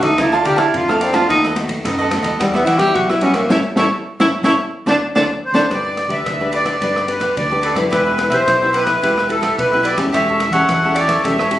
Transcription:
Already playing: A2
0.00 D2 D#4 A4 D5 E5, kick, ride
0.18 D2 D3 A#3 E4 F4 A4 A#4 D5 F5 A5, kick, cross-stick, ride
0.32 F4 D5 F5 A5, cross-stick
0.44 D3 A#3 F4 G4 A4 A#4 D5 F5 A5, ride
0.56 E4 D5 F5 A5, kick, cross-stick, ride
0.74 F2 D3 F4, kick, ride
0.88 A3 A#3 F4 A4 D5 F5 A5, cross-stick
1.00 C4 A#4 D5 F5 A5, ride
1.13 A3 B3 F4 F#4 D5 F5 A5, kick, cross-stick, ride
1.29 D#2 D#3 D#4 A4 B4 D#5, kick, ride
1.44 A4 B4 D#5, cross-stick
1.55 A3 B3 F#4, muted cavaquinho stroke, cross-stick, ride
1.68 muted cavaquinho stroke, kick, ride
1.84 F#2 D#3 D#4 A4 B4 D#5, kick, cross-stick, ride
1.99 A4 B4 D#5
2.11 A3 B3 F#4, cross-stick, ride
2.22 D#2 A4 B4 D#5, kick, ride
2.39 E2 E3 G3 B3 F#4 G4 B4 E5, kick, cross-stick, ride
2.54 B3 G4 B4 E5, cross-stick
2.65 E3 E4 F#4 G4 B4 E5, ride
2.79 G3 B3 F#4 G4 B4 E5, kick, cross-stick, ride
2.95 B1 B2 F#4, kick, ride
3.09 E4 G4 B4 E5, cross-stick
3.21 G3 B3 C#4 F#4 G4 B4 E5, ride
3.34 A#3 G4 B4 E5, kick, cross-stick, ride
3.50 A1 G3 A3 C#4 E4 A4 C#5 E5, kick, snare
3.75 A1 G3 A3 C#4 E4 A4 C#5 E5, kick, snare
4.20 A1 G3 A3 C#4 E4 A4 C#5 E5, kick, snare
4.42 A1 G3 A3 C#4 E4 A4 C#5 E5, kick, snare
4.86 D2 A3 C4 D4 A4 C5 D5, kick, snare
5.15 D2 A3 C4 D4 A4 C5 D5, kick, snare
5.45 C5
5.52 D2 A3 C4 D4 A4 C5 D5, kick, snare
5.70 G1 G3 D4 G4 B4 D5, kick, cross-stick, ride
5.85 G4 B4 D5
5.97 muted cavaquinho stroke, cross-stick, ride
6.08 D2 D4 G4 B4 D5 E5, kick, ride
6.26 D2 D3, kick, cross-stick, ride
6.40 D4 G4 B4 D5
6.52 D4 G4 B4 D5, ride
6.65 G4 B4 D5, kick, cross-stick, ride
6.81 G1 G3 D4 G4 B4 D5, kick, ride
6.95 G4 B4 D5, cross-stick
7.08 D4 G4 B4, muted cavaquinho stroke, ride
7.20 G4 B4 D5, kick, cross-stick, ride
7.36 D2 D3 D5, kick, ride
7.50 D4 G4 B4 D5
7.62 D4 G4 A4 B4 D5, ride
7.74 F#1 E4 G4 B4 D5, kick, cross-stick, ride
7.90 E1 E3 E4 G4 B4 E5, kick, cross-stick, ride
8.05 G4 B4 E5
8.18 muted cavaquinho stroke, cross-stick, ride
8.29 B1 E4 G4 B4 C5 E5, kick, ride
8.48 B1 B2, kick, cross-stick, ride
8.61 E4 G4 B4 E5
8.73 E4 G4 B4 E5, ride
8.86 G4 B4 E5, kick, cross-stick, ride
9.02 E1 E3 E4 G4 B4 E5, kick, ride
9.16 G4 B4 E5, cross-stick
9.29 E4 G4 A4 B4, muted cavaquinho stroke, ride
9.41 G4 B4 E5, kick, cross-stick, ride
9.59 B1 B2 B4, kick, ride
9.72 E4 G4 B4 E5
9.83 E4 G4 B4 D5 E5, ride
9.95 E1 C#4 G4 A4 B4 E5, kick, cross-stick, ride
10.12 E1 E3 G4 A4 C#5 E5, kick, cross-stick, ride
10.28 A4 C#5 E5
10.40 muted cavaquinho stroke, cross-stick, ride
10.50 E2 C#4 G4 A4 C#5 E5 F#5, kick, ride
10.55 A4
10.69 E2 E3, kick, cross-stick, ride
10.83 C#4 G4 A4 C#5 E5
10.94 G4 A4 C#5 D5 E5, ride
11.07 A4 C#5 E5, kick, cross-stick, ride
11.24 E1 E3 C#4 G4 A4 C#5 E5, kick, ride
11.38 A4 C#5 E5, cross-stick
11.51 C#4 G4 A4, muted cavaquinho stroke, ride

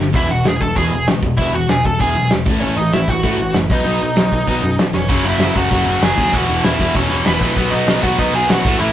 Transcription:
Already playing: G1
0.00 G2 D3
0.14 E1 E2 B2 E3 E4 E5, kick, open hi-hat
0.28 E1 E2 B2 F#4 F#5, open hi-hat
0.44 E1 E2 B2 G#4 G#5, snare, open hi-hat
0.60 E1 E2 B2 A4 A5, kick, open hi-hat
0.76 E2 B2 E3 G#4 G#5, kick, open hi-hat
0.92 E1 E2 B2, open hi-hat
1.07 C#2 E2, snare, open hi-hat
1.11 B2
1.22 E1 B2, kick, open hi-hat
1.26 E2
1.37 E1 E2 B2 E4 E5, kick, open hi-hat
1.42 E2 B2 E3
1.53 E1 E2 F#4 F#5, open hi-hat
1.57 E2 B2
1.69 E1 E2 B2 G#4 G#5, snare, open hi-hat
1.84 E1 E2 B2 A4 A5, kick, open hi-hat
2.00 E1 E2 B2 E3 G#4 G#5, kick, open hi-hat
2.15 B1 E2 B2, open hi-hat
2.30 E1 E2 B2, snare, open hi-hat
2.46 A1 A2 E3 A3, kick, open hi-hat
2.50 A3
2.60 A1 A2 E3 C#4 C#5, open hi-hat
2.65 A3
2.76 A1 A2 D#4 D#5, open hi-hat
2.81 E3
2.93 A1 A2 E3 E4 E5, snare, open hi-hat
3.08 A1 A2 F#4 F#5, kick, open hi-hat
3.12 E3
3.23 A2 E3 A3, kick, open hi-hat
3.38 A1 A2 E3, open hi-hat
3.53 F#1 A2, snare, open hi-hat
3.57 E3
3.70 B1 B2 F#3 B3 D#4 D#5, kick
3.85 B1 B2 F#3 B3, open hi-hat
4.01 B1 B2 F#3, open hi-hat
4.16 B1 B2 F#3, snare, open hi-hat
4.31 B1 B2 F#3, kick, open hi-hat
4.47 B1 B2 F#3 B3, kick, open hi-hat
4.63 F#2 B2 F#3, open hi-hat
4.78 B1 B2 F#3, snare, open hi-hat
4.93 F1 B2 F#3 C#4 C#5, snare
5.09 F#1 F#2 C#3 F#3, kick, crash
5.24 F#1 F#2 C#3 F#3 E4 E5
5.38 F#1 F#2 C#3 F#3, snare, open hi-hat
5.55 F#1 F#2 C#3 F#3 F#4 F#5, kick
5.71 F#1 F#2 C#3 F#3, kick, open hi-hat
5.85 F#1 F#2 C#3 F#3
6.01 F#1 F#2 C#3 F#3 G#4 G#5, snare, open hi-hat
6.18 D#2 F#2 C#3 F#3, kick
6.33 E1 E2 B2 E3 F#4 F#5, kick, open hi-hat
6.48 E1 E2 B2 E3
6.64 E1 E2 B2 E3 E4 E5, snare, open hi-hat
6.78 E1 E2 B2 E3, kick
6.94 E1 E2 B2 E3 C#4 C#5, kick, open hi-hat
7.10 E1 E2 B2 E3
7.25 E1 E2 B2 E3 B3 B4, snare, open hi-hat
7.40 A#1 E2 B2 E3 B3 B4, kick
7.56 B1 B2 F#3 B3, kick, open hi-hat
7.70 B1 B2 F#3 B3 D#4 D#5
7.87 B1 B2 F#3 B3, snare, open hi-hat
8.03 B1 B2 F#3 B3 F#4 F#5, kick
8.19 B1 B2 F#3 B3 D#4 D#5, kick, open hi-hat
8.33 B1 B2 F#3 B3 G#4 G#5
8.48 B1 B2 F#3 B3 F#4 F#5, snare, open hi-hat
8.65 A1 A2 E3 A3, kick
8.79 A1 A2 E3 A3 E4 E5, open hi-hat

